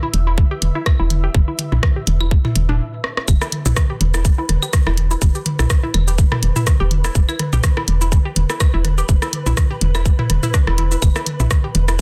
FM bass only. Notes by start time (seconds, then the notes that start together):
0.14 E1
0.62 E1
1.00 E1
1.35 E1
1.72 B1
2.07 E1
2.56 E1
3.28 E1
3.66 B1
4.01 E1
4.49 E1
4.87 E1
5.22 E1
5.59 B1
5.94 E1
6.43 E1
6.80 E1
7.15 E1
7.53 B1
7.88 E1
8.36 E1
8.74 E1
9.09 E1
9.46 B1
9.81 E1
10.30 E1
10.67 E1
11.02 E1
11.40 B1
11.75 E1